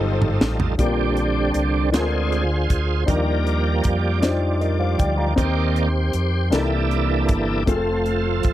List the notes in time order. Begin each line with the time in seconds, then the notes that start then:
Already playing: G1 G3 D#4 F4 G4 A4 C5
0.22 mid tom
0.41 A1, snare
0.60 floor tom
0.78 A#1 A#2 D3 G3 C4 D4 F4 G4 A#4, kick, closed hi-hat
1.17 closed hi-hat
1.54 C2, closed hi-hat
1.91 D2 D3 G#3 C4 D4 F4 G#4 A#4 C5, snare, closed hi-hat
2.32 closed hi-hat
2.70 D2, kick, closed hi-hat
3.06 D#2 D#3 F3 G3 A#3 D4 D#4 G4 A#4 D5, kick, closed hi-hat
3.47 closed hi-hat
3.84 F2, kick, closed hi-hat
4.21 D4 D#4 F4 C5, snare, closed hi-hat
4.29 G4
4.61 A#4 D#5, closed hi-hat
4.80 C5 F5
4.99 D2 D5 G5, kick, closed hi-hat
5.18 F5 A#5
5.36 D#2 D#3 A#3 C4 D#4 G4 A#4 C5 D5, kick, closed hi-hat
5.76 closed hi-hat
6.13 F2, closed hi-hat
6.50 C2 C3 E3 A#3 D4 D#4 E4 G4 A4, snare, closed hi-hat
6.58 E4
6.91 closed hi-hat
7.29 G1, kick, closed hi-hat
7.66 F1 F3 A3 C4 F4 G#4 A4, kick, closed hi-hat
7.76 A4
8.06 closed hi-hat
8.43 G1, kick, closed hi-hat